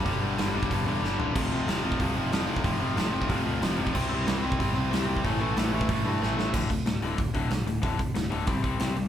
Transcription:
0.06 picked electric bass G1, overdriven electric guitar G2 D3 G3, kick, open hi-hat
0.21 picked electric bass G1, overdriven electric guitar G2 D3 G3
0.38 picked electric bass G1, overdriven electric guitar G2 D3 G3, snare, open hi-hat
0.54 picked electric bass G1, overdriven electric guitar G2 D3 G3
0.63 kick
0.70 picked electric bass G1, overdriven electric guitar G2 D3 G3, kick, open hi-hat
0.85 picked electric bass E2, overdriven electric guitar G2 D3 G3
1.02 picked electric bass G1, overdriven electric guitar G2 D3 G3, snare
1.18 picked electric bass E1, overdriven electric guitar G2 D3 G3, floor tom
1.34 picked electric bass F1, overdriven electric guitar F2 C3 F3, kick, crash
1.51 picked electric bass F1, overdriven electric guitar F2 C3 F3
1.67 picked electric bass F1, overdriven electric guitar F2 C3 F3, snare, open hi-hat
1.83 picked electric bass F1, overdriven electric guitar F2 C3 F3
1.92 kick
1.99 picked electric bass C2, overdriven electric guitar F2 C3 F3, kick, open hi-hat
2.16 picked electric bass F1, overdriven electric guitar F2 C3 F3
2.32 picked electric bass F1, overdriven electric guitar F2 C3 F3, snare, open hi-hat
2.47 overdriven electric guitar F2 C3 F3
2.56 kick
2.64 picked electric bass F1, overdriven electric guitar F2 C3 F3, kick, open hi-hat
2.80 picked electric bass F1, overdriven electric guitar F2 C3 F3
2.96 picked electric bass F1, overdriven electric guitar F2 C3 F3, snare, open hi-hat
3.12 picked electric bass F1, overdriven electric guitar F2 C3 F3
3.22 kick
3.28 picked electric bass F1, overdriven electric guitar F2 C3 F3, kick, open hi-hat
3.45 picked electric bass D2, overdriven electric guitar F2 C3 F3
3.61 picked electric bass F1, overdriven electric guitar F2 C3 F3, snare, open hi-hat
3.77 picked electric bass F1, overdriven electric guitar F2 C3 F3
3.87 kick
3.94 picked electric bass C2, overdriven electric guitar C3 G3 C4, kick, crash
4.09 picked electric bass C2, overdriven electric guitar C3 G3 C4
4.26 picked electric bass C2, overdriven electric guitar C3 G3 C4, snare, open hi-hat
4.42 picked electric bass C2, overdriven electric guitar C3 G3 C4
4.52 kick
4.58 picked electric bass G1, overdriven electric guitar C3 G3 C4, kick, open hi-hat
4.74 picked electric bass C2, overdriven electric guitar C3 G3 C4
4.90 picked electric bass C2, overdriven electric guitar C3 G3 C4, open hi-hat
4.94 snare
5.06 overdriven electric guitar C3 G3 C4
5.17 kick
5.23 picked electric bass A1, overdriven electric guitar A2 E3 A3, kick, open hi-hat
5.40 picked electric bass A1, overdriven electric guitar A2 E3 A3
5.56 picked electric bass A1, overdriven electric guitar A2 E3 A3, snare, open hi-hat
5.72 picked electric bass A1, overdriven electric guitar A2 E3 A3
5.81 kick
5.88 picked electric bass A1, overdriven electric guitar A2 E3 A3, kick, open hi-hat
6.04 picked electric bass G2, overdriven electric guitar A2 E3 A3
6.20 picked electric bass A1, overdriven electric guitar A2 E3 A3, snare
6.36 picked electric bass A1, overdriven electric guitar A2 E3 A3, snare
6.53 picked electric bass D1, overdriven electric guitar D2 A2 D3, kick, crash
6.70 picked electric bass D1, overdriven electric guitar D2 A2, kick, open hi-hat
6.86 picked electric bass D1, overdriven electric guitar D2 A2, snare, open hi-hat
7.02 picked electric bass D1, overdriven electric guitar D2 A2 D3, open hi-hat
7.18 picked electric bass D1, overdriven electric guitar D2 A2, kick, open hi-hat
7.34 picked electric bass D1, overdriven electric guitar D2 A2 D3, kick, open hi-hat
7.50 picked electric bass B1, overdriven electric guitar D2 A2, snare, open hi-hat
7.67 picked electric bass D1, overdriven electric guitar D2 A2, open hi-hat
7.82 picked electric bass D1, overdriven electric guitar D2 A2 D3, kick, open hi-hat
7.98 picked electric bass D1, overdriven electric guitar D2 A2, kick, open hi-hat
8.14 picked electric bass D1, overdriven electric guitar D2 A2, snare, open hi-hat
8.30 picked electric bass D1, overdriven electric guitar D2 A2 D3, open hi-hat
8.46 picked electric bass C2, overdriven electric guitar C3 G3 C4, kick, open hi-hat
8.62 picked electric bass C2, overdriven electric guitar C3 G3 C4, kick, open hi-hat
8.79 picked electric bass C2, overdriven electric guitar C3 G3 C4, snare, open hi-hat
8.95 picked electric bass C2, overdriven electric guitar C3 G3, open hi-hat

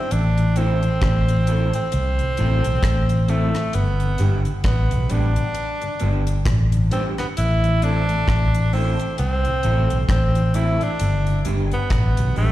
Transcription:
Already playing: tenor saxophone C4
0.11 fingered electric bass A1, tenor saxophone D4, closed hi-hat
0.38 tonewheel organ A2 E3, closed hi-hat
0.56 clean electric guitar A3 C4 E4 A4, tonewheel organ A3 C4 E4, tenor saxophone C4, closed hi-hat
0.83 tonewheel organ A2 E3, closed hi-hat
1.01 fingered electric bass A1, kick, cross-stick, closed hi-hat
1.28 tonewheel organ A2 E3, closed hi-hat
1.47 clean electric guitar A3 C4 E4 A4, tonewheel organ A3 C4 E4, closed hi-hat
1.73 tonewheel organ A2 E3, tenor saxophone C4, closed hi-hat
1.92 fingered electric bass C2, closed hi-hat
2.19 tonewheel organ A2 E3, closed hi-hat
2.37 fingered electric bass A1, clean electric guitar A3 C4 E4 A4, tonewheel organ A3 C4 E4, closed hi-hat
2.64 fingered electric bass B1, closed hi-hat
2.83 fingered electric bass A1, kick, cross-stick, closed hi-hat
3.09 tonewheel organ A2 E3, closed hi-hat
3.28 clean electric guitar A3 C4 E4 A4, tonewheel organ A3 C4 E4, tenor saxophone A3, closed hi-hat
3.55 tonewheel organ A2 E3, cross-stick, closed hi-hat
3.73 fingered electric bass G1, tenor saxophone B3, closed hi-hat
4.00 tonewheel organ G2 D3, closed hi-hat
4.18 fingered electric bass G1, clean electric guitar G3 B3 D4 G4, tonewheel organ G3 B3 D4, closed hi-hat
4.45 tonewheel organ G2 D3, closed hi-hat
4.64 fingered electric bass A1, tenor saxophone B3, kick, cross-stick, closed hi-hat
4.91 fingered electric bass B1, tonewheel organ G2 D3, closed hi-hat
5.09 fingered electric bass A1, clean electric guitar G3 B3 D4 G4, tonewheel organ G3 B3 D4, tenor saxophone D4, closed hi-hat
5.36 tonewheel organ G2 D3, closed hi-hat
5.55 closed hi-hat
5.81 tonewheel organ G2 D3, closed hi-hat
5.99 fingered electric bass G1, clean electric guitar G3 B3 D4 G4, tonewheel organ G3 B3 D4, closed hi-hat
6.27 closed hi-hat
6.46 fingered electric bass A1, kick, cross-stick, closed hi-hat
6.72 tonewheel organ G2 D3, closed hi-hat
6.91 clean electric guitar G3 B3 D4 G4, tonewheel organ G3 B3 D4, tenor saxophone C4, closed hi-hat
7.18 tonewheel organ G2 D3, tenor saxophone B3, cross-stick, closed hi-hat
7.37 fingered electric bass A1, tenor saxophone E4, closed hi-hat
7.64 tonewheel organ A2 E3, closed hi-hat
7.82 clean electric guitar A3 C4 E4 A4, tonewheel organ A3 C4 E4, tenor saxophone D4, closed hi-hat
8.09 tonewheel organ A2 E3, closed hi-hat
8.28 fingered electric bass A1, kick, cross-stick, closed hi-hat
8.54 tonewheel organ A2 E3, closed hi-hat
8.73 clean electric guitar A3 C4 E4 A4, tonewheel organ A3 C4 E4, tenor saxophone C4, open hi-hat
8.99 tonewheel organ A2 E3, closed hi-hat
9.18 fingered electric bass C2, tenor saxophone C4, closed hi-hat
9.45 tonewheel organ A2 E3, closed hi-hat
9.63 fingered electric bass A1, tonewheel organ A3 C4 E4, clean electric guitar A3 C4 E4 A4, closed hi-hat
9.90 fingered electric bass B1, closed hi-hat
10.09 fingered electric bass A1, tenor saxophone C4, kick, cross-stick, closed hi-hat
10.35 tonewheel organ A2 E3, closed hi-hat
10.54 clean electric guitar A3 C4 E4 A4, tonewheel organ A3 C4 E4, tenor saxophone E4, closed hi-hat
10.81 tonewheel organ A2 E3, tenor saxophone D4, closed hi-hat
10.99 fingered electric bass G1, closed hi-hat
11.27 tonewheel organ G2 D3, closed hi-hat
11.45 fingered electric bass G1, clean electric guitar G3 B3 D4 G4, tonewheel organ G3 B3 D4, closed hi-hat
11.71 tonewheel organ G2 D3, tenor saxophone B3, closed hi-hat
11.90 fingered electric bass A1, kick, cross-stick, closed hi-hat
12.17 fingered electric bass B1, tonewheel organ G2 D3, closed hi-hat
12.36 fingered electric bass A1, clean electric guitar G3 B3 D4 G4, tonewheel organ G3 B3 D4, tenor saxophone A3, open hi-hat

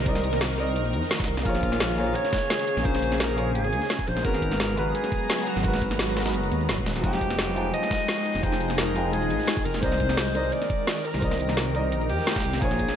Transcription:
Already playing: ambient pad D#3 A#4, felt piano C4 A#4 D5 D#5
0.03 detuned saw bass C2, felt piano C4 A#4 D5, kick, closed hi-hat
0.09 felt piano D#5
0.15 snare
0.24 closed hi-hat
0.33 snare
0.41 snare, closed hi-hat
0.57 felt piano C4 A#4 D5 D#5, closed hi-hat
0.76 detuned saw bass A#1, closed hi-hat
0.85 closed hi-hat
0.93 detuned saw bass F2, closed hi-hat
1.03 snare, closed hi-hat
1.11 snare, closed hi-hat
1.16 snare, closed hi-hat
1.20 kick, snare, closed hi-hat
1.24 snare, closed hi-hat
1.28 detuned saw bass C2, closed hi-hat
1.37 snare
1.43 detuned saw bass A#1, ambient pad C#3 G#4, felt piano A#3 G#4 C5, alto saxophone F4, kick, closed hi-hat
1.49 felt piano C#5
1.55 snare
1.63 kick, closed hi-hat
1.72 snare
1.80 snare, closed hi-hat
1.97 felt piano A#3 G#4 C5 C#5, closed hi-hat
2.15 alto saxophone C#5, closed hi-hat
2.25 snare, closed hi-hat
2.33 kick, snare, closed hi-hat
2.50 snare, closed hi-hat
2.59 snare
2.68 closed hi-hat
2.77 detuned saw bass A#1, snare
2.83 detuned saw bass A#1, felt piano A#3 G#4 C5, alto saxophone C5, kick, closed hi-hat
2.88 felt piano C#4
2.95 snare
3.03 closed hi-hat
3.12 snare
3.20 alto saxophone A#4, snare, closed hi-hat
3.36 felt piano A#3 G#4 C5 C#5, closed hi-hat
3.55 detuned saw bass G#1, alto saxophone G#4, closed hi-hat
3.64 closed hi-hat
3.72 detuned saw bass D#2, closed hi-hat
3.82 snare, closed hi-hat
3.90 snare, closed hi-hat
3.99 kick, snare
4.07 detuned saw bass A#1, alto saxophone C5, closed hi-hat
4.17 snare
4.22 detuned saw bass G#1, ambient pad F#3 B3 A#5, felt piano G#3 F#4 A#4, alto saxophone A#4, kick, closed hi-hat
4.28 felt piano B3
4.34 snare
4.42 kick, closed hi-hat
4.52 snare
4.60 snare, closed hi-hat
4.76 felt piano G#3 F#4 A#4 B4, closed hi-hat
4.88 alto saxophone A#4
4.95 alto saxophone G#4, closed hi-hat
5.04 snare, closed hi-hat
5.12 kick, closed hi-hat
5.30 snare, closed hi-hat
5.39 snare
5.47 alto saxophone F#4, closed hi-hat
5.56 detuned saw bass G#1, snare
5.62 detuned saw bass G#1, felt piano G#3 F#4 A#4, kick, closed hi-hat
5.68 felt piano B4
5.74 snare
5.82 kick, closed hi-hat
5.91 snare
5.99 snare, closed hi-hat
6.16 felt piano G#3 F#4 A#4 B4, snare, closed hi-hat
6.26 snare, closed hi-hat
6.34 detuned saw bass F#1, closed hi-hat
6.43 closed hi-hat
6.52 detuned saw bass D#2, closed hi-hat
6.61 closed hi-hat
6.69 detuned saw bass D#1, snare, closed hi-hat
6.78 kick
6.86 snare, closed hi-hat
6.96 snare, closed hi-hat
7.01 detuned saw bass F1, felt piano F3 G#3 D#4, ambient pad G#3 D#4, alto saxophone G4, kick, closed hi-hat
7.06 felt piano G5
7.13 snare
7.21 kick, closed hi-hat
7.30 snare
7.39 snare, closed hi-hat
7.55 felt piano F3 D#4 G#4 G5, closed hi-hat
7.74 alto saxophone D#5, closed hi-hat
7.83 snare, closed hi-hat
7.91 kick, snare, closed hi-hat
8.08 snare, closed hi-hat
8.18 snare
8.26 closed hi-hat
8.35 detuned saw bass F1, snare
8.41 detuned saw bass F1, felt piano F3 D#4 G#4, alto saxophone C5, kick, closed hi-hat
8.46 felt piano G5
8.52 snare
8.61 closed hi-hat
8.70 snare
8.78 alto saxophone A#4, snare, closed hi-hat
8.95 felt piano F3 D#4 G#4 G5, closed hi-hat
9.13 detuned saw bass D#1, alto saxophone G#4, closed hi-hat
9.22 closed hi-hat
9.30 detuned saw bass A#1, closed hi-hat
9.39 snare, closed hi-hat
9.47 snare, closed hi-hat
9.57 kick, snare
9.65 detuned saw bass F1, alto saxophone A#4, closed hi-hat
9.74 snare
9.80 detuned saw bass C2, ambient pad D#3 A#4, felt piano C4 A#4 D5, alto saxophone C5, kick, closed hi-hat
9.86 felt piano D#5
9.92 snare
10.00 kick, closed hi-hat
10.09 snare
10.17 snare, closed hi-hat
10.34 felt piano C4 A#4 D5 D#5, closed hi-hat
10.52 alto saxophone D5, closed hi-hat
10.62 snare, closed hi-hat
10.70 kick, closed hi-hat
10.87 snare, closed hi-hat
10.97 snare
11.05 alto saxophone A#4, closed hi-hat
11.14 detuned saw bass C2, snare
11.19 detuned saw bass C2, felt piano C4 A#4 D5, kick, closed hi-hat
11.25 felt piano D#5
11.31 snare
11.40 closed hi-hat
11.49 snare
11.57 snare, closed hi-hat
11.73 felt piano C4 A#4 D5 D#5, closed hi-hat
11.92 detuned saw bass A#1, closed hi-hat
12.01 closed hi-hat
12.10 detuned saw bass F2, alto saxophone G4, closed hi-hat
12.19 snare, closed hi-hat
12.27 snare, closed hi-hat
12.32 snare, closed hi-hat
12.36 kick, snare, closed hi-hat
12.40 snare, closed hi-hat
12.44 detuned saw bass C2, closed hi-hat
12.53 snare
12.59 detuned saw bass A#1, ambient pad C#3 G#4, felt piano A#3 G#4 C5, alto saxophone G#4, kick, closed hi-hat
12.65 felt piano C#5
12.71 snare
12.79 kick, closed hi-hat
12.88 snare

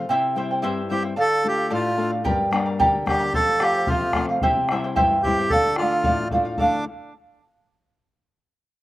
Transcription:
0.09 nylon-string guitar C3, charango E4 G4 C5 E5 G5
0.36 nylon-string guitar G3 C4 E4, charango E4 C5 E5 G5
0.51 charango E4 C5 G5
0.62 nylon-string guitar G2, charango E4 G4 C5 E5 G5
0.90 nylon-string guitar G3 C4 E4, charango E4 C5 E5 G5, accordion G4
1.03 charango E4 C5 G5
1.16 nylon-string guitar D3, charango A4 D5 F5
1.20 accordion A4
1.43 nylon-string guitar A3 D4 F4, charango A4 D5 F5
1.48 accordion G4
1.56 charango D5 F5
1.70 nylon-string guitar A2, accordion F4, charango A4 D5 F5
1.97 nylon-string guitar A3 D4 F4, charango A4 D5 F5
2.10 charango D5 F5
2.24 nylon-string guitar G2, charango G4 A#4 D5 G5 A#5, bombo low
2.51 nylon-string guitar G3 A#3 D4, charango A#4 D5 G5 A#5, bombo rim
2.66 charango A#4 D5 A#5
2.79 nylon-string guitar D3, charango G4 A#4 D5 G5 A#5, bombo low
3.06 nylon-string guitar G3 A#3 D4, accordion G4, charango A#4 D5 G5 A#5, bombo rim, bombo low
3.20 charango A#4 D5 A#5
3.34 nylon-string guitar F2, charango A4 C5 F5, accordion A4, bombo low
3.60 nylon-string guitar F3 A3 C4, accordion G4, charango A4 C5 F5, bombo rim
3.76 charango C5 F5
3.87 nylon-string guitar C3, accordion F4, charango A4 C5 F5, bombo low
4.13 nylon-string guitar F3 A3 C4, charango A4 C5 F5, bombo rim, bombo low
4.29 charango C5 F5
4.42 nylon-string guitar C3, charango E4 G4 C5 E5 G5, bombo low
4.69 nylon-string guitar G3 C4 E4, charango E4 C5 E5, bombo rim
4.73 charango G5
4.84 charango E4 C5 G5
4.96 nylon-string guitar G2, charango E4 G4 C5 E5 G5, bombo low
5.23 nylon-string guitar G3 C4, charango E4 C5 E5 G5, accordion G4, bombo low
5.27 nylon-string guitar E4
5.39 charango E4 C5 G5
5.50 nylon-string guitar D3, accordion A4, charango A4 D5 F5, bombo low
5.76 accordion F4, charango A4, bombo rim
5.80 nylon-string guitar A3 D4 F4, charango D5 F5
5.92 charango D5 F5
6.03 nylon-string guitar A2, charango A4 D5 F5, bombo low
6.31 nylon-string guitar A3 D4 F4, charango A4 D5 F5, bombo low
6.45 charango D5 F5
6.57 nylon-string guitar D3, accordion D4, charango A4 D5 F5, bombo low
6.62 nylon-string guitar A3

